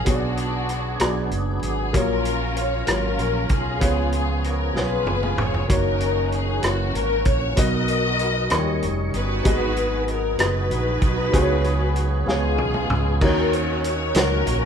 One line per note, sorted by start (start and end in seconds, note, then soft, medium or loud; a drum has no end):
0.05 0.97 B1 medium
0.05 0.96 B2 medium
0.05 1.00 F#3 medium
0.05 0.79 B3 medium
0.05 1.00 B3 soft
0.05 1.00 D4 soft
0.05 1.29 D4 medium
0.05 0.79 F#4 medium
0.05 1.32 F#4 medium
0.05 0.80 G#4 medium
0.05 1.00 G#4 medium
0.05 0.14 C#5 medium
0.05 kick medium
0.05 closed hi-hat medium
0.14 0.83 D5 medium
0.37 closed hi-hat soft
0.69 cross-stick soft
0.69 closed hi-hat soft
0.99 1.29 B1 medium
0.99 1.91 B2 soft
0.99 1.94 F#3 medium
0.99 1.73 B3 medium
0.99 1.95 B3 medium
0.99 1.95 D4 medium
0.99 1.73 F#4 medium
0.99 1.74 G#4 medium
0.99 1.74 D5 medium
0.99 cross-stick medium
0.99 closed hi-hat medium
1.31 1.60 F#1 medium
1.31 closed hi-hat soft
1.63 1.94 G#1 medium
1.63 1.92 G#4 medium
1.63 closed hi-hat soft
1.93 2.84 A#1 medium
1.93 2.84 A#2 medium
1.93 2.67 F#3 medium
1.93 3.79 F#3 medium
1.93 2.67 A#3 medium
1.93 3.79 C#4 soft
1.93 2.85 C#4 medium
1.93 2.67 F4 medium
1.93 3.78 F4 soft
1.93 2.85 F4 medium
1.93 2.01 G#4 soft
1.93 2.58 A#4 medium
1.93 2.68 C#5 medium
1.93 kick medium
1.93 closed hi-hat medium
2.02 3.82 A#4 medium
2.25 closed hi-hat soft
2.57 2.88 C#5 medium
2.57 closed hi-hat soft
2.87 3.17 G#1 medium
2.87 3.61 F#3 soft
2.87 3.60 A#3 soft
2.87 3.78 C#4 medium
2.87 3.61 F4 soft
2.87 3.50 F4 soft
2.87 3.51 A#4 medium
2.87 3.62 C#5 medium
2.87 cross-stick medium
2.87 closed hi-hat medium
3.18 3.48 A#1 medium
3.18 closed hi-hat soft
3.49 3.81 B1 medium
3.49 4.41 B3 medium
3.49 4.41 F4 medium
3.49 4.13 G#4 medium
3.49 kick medium
3.49 closed hi-hat soft
3.80 4.72 C#2 medium
3.80 4.71 C#3 medium
3.80 5.66 F3 medium
3.80 4.54 B3 medium
3.80 5.67 B3 soft
3.80 5.66 C#4 soft
3.80 4.54 F4 medium
3.80 4.55 G#4 medium
3.80 5.66 G#4 medium
3.80 4.55 C#5 medium
3.80 kick medium
3.80 closed hi-hat medium
4.12 4.43 G#4 medium
4.12 closed hi-hat soft
4.44 4.77 A#4 medium
4.44 cross-stick soft
4.44 closed hi-hat soft
4.74 5.04 B1 medium
4.74 5.48 B3 soft
4.74 5.48 F4 soft
4.74 5.66 F4 medium
4.74 5.49 G#4 soft
4.74 5.66 G#4 medium
4.74 5.39 B4 medium
4.74 5.49 C#5 medium
4.74 snare soft
5.06 5.35 F#1 medium
5.06 high tom medium
5.23 mid tom medium
5.37 5.67 F1 medium
5.37 5.70 C#5 medium
5.37 mid tom medium
5.54 floor tom medium
5.68 6.60 F#1 medium
5.68 6.64 D#3 medium
5.68 6.42 A#3 medium
5.68 6.64 A#3 soft
5.68 6.64 C#4 soft
5.68 6.60 C#4 medium
5.68 6.42 D#4 medium
5.68 6.60 D#4 medium
5.68 6.64 F#4 medium
5.68 6.43 F#4 medium
5.68 6.29 A#4 medium
5.68 6.43 C#5 medium
5.68 kick medium
5.68 closed hi-hat medium
6.00 closed hi-hat soft
6.32 6.64 G#4 medium
6.32 closed hi-hat soft
6.62 6.92 F#1 medium
6.62 7.58 E3 medium
6.62 7.36 A#3 soft
6.62 7.54 A#3 soft
6.62 7.58 A#3 soft
6.62 7.54 C#4 medium
6.62 7.58 C#4 soft
6.62 7.36 E4 soft
6.62 7.37 F#4 soft
6.62 6.95 F#4 medium
6.62 7.58 F#4 medium
6.62 7.37 C#5 medium
6.62 cross-stick medium
6.62 closed hi-hat medium
6.95 7.24 G#1 medium
6.95 7.26 A#4 medium
6.95 closed hi-hat soft
7.25 7.55 A#1 medium
7.25 7.56 C#5 medium
7.25 kick medium
7.25 closed hi-hat soft
7.56 8.48 B1 medium
7.56 8.47 B2 medium
7.56 8.53 F#3 medium
7.56 8.30 B3 medium
7.56 8.52 B3 soft
7.56 8.50 D#4 soft
7.56 8.30 F#4 medium
7.56 8.79 F#4 medium
7.56 8.31 A#4 medium
7.56 8.79 A#4 medium
7.56 8.53 A#4 medium
7.56 8.31 D#5 medium
7.56 8.84 D#5 medium
7.56 kick medium
7.56 closed hi-hat medium
7.88 closed hi-hat soft
8.19 cross-stick soft
8.19 closed hi-hat soft
8.50 8.84 D#2 medium
8.50 9.41 D#3 medium
8.50 9.46 G3 medium
8.50 9.24 C#4 medium
8.50 9.45 C#4 medium
8.50 9.44 D#4 medium
8.50 8.58 F4 soft
8.50 9.24 A#4 medium
8.50 9.45 C#5 medium
8.50 9.25 D#5 medium
8.50 cross-stick medium
8.50 closed hi-hat medium
8.57 9.27 G3 medium
8.82 9.11 F1 medium
8.82 closed hi-hat soft
9.14 9.43 G1 medium
9.14 10.04 D#4 medium
9.14 10.04 F#4 medium
9.14 10.05 B4 medium
9.14 closed hi-hat soft
9.44 10.35 G#1 medium
9.44 10.35 G#2 medium
9.44 11.30 F#3 medium
9.44 9.52 A#3 soft
9.44 10.18 B3 medium
9.44 11.30 D#4 soft
9.44 10.18 F#4 medium
9.44 10.18 G#4 medium
9.44 11.30 G#4 medium
9.44 10.19 D#5 medium
9.44 kick medium
9.44 closed hi-hat medium
9.52 11.33 B3 soft
9.77 closed hi-hat soft
10.08 10.40 A#4 medium
10.08 closed hi-hat soft
10.38 10.68 F#1 medium
10.38 11.12 B3 medium
10.38 12.55 D#4 medium
10.38 11.12 F#4 soft
10.38 12.56 F#4 medium
10.38 11.12 G#4 soft
10.38 12.60 B4 medium
10.38 11.13 D#5 soft
10.38 cross-stick medium
10.38 closed hi-hat medium
10.70 10.99 A#1 medium
10.70 closed hi-hat soft
11.02 11.31 B1 medium
11.02 kick medium
11.02 closed hi-hat soft
11.32 12.24 C#2 medium
11.32 12.24 C#3 medium
11.32 12.29 F#3 medium
11.32 12.06 B3 medium
11.32 12.28 B3 medium
11.32 12.28 C#4 medium
11.32 12.06 F#4 medium
11.32 12.07 G#4 medium
11.32 12.28 G#4 medium
11.32 11.41 C5 medium
11.32 kick medium
11.32 closed hi-hat medium
11.41 12.10 C#5 medium
11.64 closed hi-hat soft
11.96 closed hi-hat soft
12.26 12.58 C#2 medium
12.26 13.18 C#3 medium
12.26 13.22 G#3 medium
12.26 13.00 B3 medium
12.26 13.18 B3 soft
12.26 13.22 B3 medium
12.26 13.21 C#4 medium
12.26 13.18 F4 soft
12.26 13.01 G#4 medium
12.26 13.22 G#4 medium
12.26 13.19 G#4 medium
12.26 13.01 C#5 medium
12.26 13.00 F5 medium
12.26 snare soft
12.58 12.88 B1 medium
12.58 high tom medium
12.74 mid tom soft
12.90 13.19 C#2 medium
12.90 mid tom medium
13.21 14.12 D#2 medium
13.21 14.12 D#3 medium
13.21 14.65 D#3 medium
13.21 13.94 A#3 medium
13.21 14.65 A#3 soft
13.21 14.65 C#4 medium
13.21 14.12 C#4 medium
13.21 13.95 D#4 medium
13.21 14.12 F#4 medium
13.21 13.95 F#4 medium
13.21 14.65 F#4 medium
13.21 13.54 A#4 medium
13.21 13.96 C#5 medium
13.21 kick medium
13.21 crash medium
13.53 13.85 C#5 medium
13.53 closed hi-hat soft
13.84 14.15 C#5 medium
13.84 closed hi-hat medium
14.15 14.44 C#2 medium
14.15 14.65 A#3 soft
14.15 14.65 C#4 medium
14.15 14.65 D#4 soft
14.15 14.65 F#4 soft
14.15 14.65 F#4 medium
14.15 14.65 A#4 medium
14.15 14.65 C#5 medium
14.15 snare medium
14.15 closed hi-hat medium
14.46 14.65 A#1 medium
14.46 closed hi-hat soft